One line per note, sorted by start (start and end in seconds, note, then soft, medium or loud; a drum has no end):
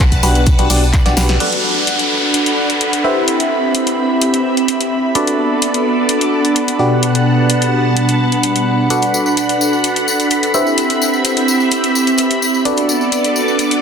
0.00 0.21 B1 loud
0.00 1.38 B4 medium
0.00 1.38 F#5 medium
0.00 1.38 A5 medium
0.12 kick medium
0.12 closed hi-hat medium
0.12 tambourine soft
0.23 0.56 B1 loud
0.23 0.45 B3 medium
0.23 0.45 D4 medium
0.23 0.45 F#4 medium
0.23 0.45 G4 medium
0.23 0.45 B4 loud
0.23 open hi-hat medium
0.23 tambourine medium
0.35 closed hi-hat soft
0.35 tambourine soft
0.46 kick loud
0.46 closed hi-hat medium
0.46 tambourine soft
0.58 0.68 B1 loud
0.58 0.68 B3 loud
0.58 0.68 D4 medium
0.58 0.68 F#4 medium
0.58 0.68 G4 medium
0.58 0.68 B4 loud
0.58 closed hi-hat medium
0.58 tambourine soft
0.70 1.03 B1 loud
0.70 0.84 B3 medium
0.70 0.84 D4 medium
0.70 0.84 F#4 medium
0.70 0.84 G4 medium
0.70 0.84 D5 medium
0.70 open hi-hat loud
0.70 tambourine medium
0.84 tambourine soft
0.93 kick loud
0.93 clap loud
0.93 closed hi-hat medium
0.93 tambourine soft
1.06 1.15 B1 medium
1.06 1.14 B3 loud
1.06 1.14 D4 medium
1.06 1.14 F#4 medium
1.06 1.14 G4 medium
1.06 1.14 D5 loud
1.06 snare medium
1.06 closed hi-hat medium
1.06 tambourine soft
1.17 1.38 B1 loud
1.17 1.37 B3 medium
1.17 1.37 D4 medium
1.17 1.37 F#4 medium
1.17 1.37 G4 medium
1.17 1.37 B4 medium
1.17 snare medium
1.17 open hi-hat medium
1.17 tambourine loud
1.28 snare medium
1.28 closed hi-hat soft
1.28 tambourine soft
1.40 3.89 D4 medium
1.40 3.03 D4 medium
1.40 3.02 F#4 medium
1.40 3.02 A4 medium
1.40 3.02 B4 medium
1.40 3.02 D5 medium
1.40 3.02 F#5 medium
1.40 3.03 F#5 medium
1.40 5.12 B5 medium
1.40 closed hi-hat medium
1.40 crash medium
1.40 downlifter medium
1.53 closed hi-hat medium
1.61 3.76 F#5 medium
1.77 13.82 B5 medium
1.83 3.84 A4 medium
1.87 closed hi-hat medium
1.99 closed hi-hat soft
2.34 closed hi-hat medium
2.46 closed hi-hat medium
2.70 closed hi-hat soft
2.81 closed hi-hat medium
2.93 closed hi-hat medium
3.04 5.15 C4 medium
3.04 5.13 C4 medium
3.04 5.13 E4 medium
3.04 5.13 G4 medium
3.04 5.13 B4 medium
3.04 5.13 C5 medium
3.04 5.13 E5 medium
3.28 5.15 G4 medium
3.28 closed hi-hat medium
3.40 closed hi-hat soft
3.61 5.81 E5 medium
3.75 closed hi-hat medium
3.87 closed hi-hat soft
4.22 closed hi-hat medium
4.34 closed hi-hat soft
4.57 closed hi-hat soft
4.68 closed hi-hat medium
4.81 closed hi-hat soft
5.15 6.78 B3 medium
5.15 11.39 D4 medium
5.15 6.77 D4 medium
5.15 6.77 F#4 medium
5.15 6.78 A4 medium
5.15 6.77 A4 medium
5.15 6.77 B4 medium
5.15 6.78 D5 medium
5.15 6.77 D5 medium
5.15 closed hi-hat medium
5.27 7.51 A4 medium
5.27 closed hi-hat soft
5.62 closed hi-hat medium
5.74 closed hi-hat soft
5.89 11.39 F#5 medium
6.09 closed hi-hat medium
6.21 closed hi-hat soft
6.45 closed hi-hat soft
6.56 closed hi-hat medium
6.68 closed hi-hat soft
6.79 8.88 B2 medium
6.79 8.90 B2 medium
6.79 8.88 B3 medium
6.79 8.88 D4 medium
6.79 8.88 F#4 medium
6.79 8.88 G4 medium
6.79 8.88 B4 medium
6.79 8.88 D5 medium
6.79 8.88 F#5 medium
6.79 8.88 A5 medium
7.03 closed hi-hat medium
7.15 closed hi-hat soft
7.50 closed hi-hat medium
7.62 closed hi-hat soft
7.70 8.90 G3 medium
7.97 closed hi-hat medium
8.09 closed hi-hat soft
8.32 closed hi-hat soft
8.43 closed hi-hat medium
8.56 closed hi-hat soft
8.90 10.53 D4 medium
8.90 10.52 F#4 medium
8.90 10.52 A4 medium
8.90 10.52 B4 medium
8.90 10.52 D5 medium
8.90 10.52 F#5 medium
8.90 10.53 F#5 medium
8.90 12.62 B5 medium
8.90 closed hi-hat medium
8.90 tambourine soft
9.02 closed hi-hat soft
9.02 tambourine soft
9.14 tambourine medium
9.26 11.39 A4 medium
9.26 tambourine soft
9.37 closed hi-hat medium
9.37 tambourine soft
9.49 closed hi-hat soft
9.49 tambourine soft
9.61 tambourine medium
9.73 tambourine soft
9.84 closed hi-hat medium
9.84 tambourine medium
9.96 closed hi-hat soft
9.96 tambourine soft
10.08 tambourine medium
10.20 closed hi-hat soft
10.20 tambourine soft
10.30 closed hi-hat medium
10.30 tambourine soft
10.43 closed hi-hat soft
10.43 tambourine soft
10.54 12.63 C4 medium
10.54 12.65 C4 medium
10.54 12.63 E4 medium
10.54 12.63 G4 medium
10.54 12.63 B4 medium
10.54 12.63 C5 medium
10.54 12.63 E5 medium
10.54 tambourine medium
10.67 tambourine soft
10.76 12.65 G4 medium
10.76 closed hi-hat medium
10.76 tambourine soft
10.90 closed hi-hat soft
10.90 tambourine soft
11.02 tambourine medium
11.13 tambourine soft
11.25 closed hi-hat medium
11.25 tambourine medium
11.37 closed hi-hat soft
11.37 tambourine soft
11.48 13.31 E5 medium
11.48 tambourine medium
11.60 tambourine soft
11.71 closed hi-hat medium
11.71 tambourine soft
11.84 closed hi-hat soft
11.84 tambourine soft
11.95 tambourine medium
12.07 closed hi-hat soft
12.07 tambourine soft
12.18 closed hi-hat medium
12.18 tambourine soft
12.31 closed hi-hat soft
12.31 tambourine soft
12.42 tambourine medium
12.54 tambourine soft
12.65 13.82 B3 medium
12.65 13.82 D4 medium
12.65 13.82 F#4 medium
12.65 13.82 A4 medium
12.65 13.82 B4 medium
12.65 13.82 D5 medium
12.65 closed hi-hat medium
12.65 tambourine soft
12.65 riser medium
12.77 closed hi-hat medium
12.77 tambourine soft
12.89 tambourine medium
12.97 13.82 A4 medium
12.97 tambourine soft
13.12 closed hi-hat medium
13.12 tambourine medium
13.17 13.82 F#5 medium
13.24 closed hi-hat soft
13.24 tambourine soft
13.36 tambourine medium
13.48 tambourine soft
13.59 closed hi-hat medium
13.59 tambourine soft
13.71 closed hi-hat medium
13.71 tambourine soft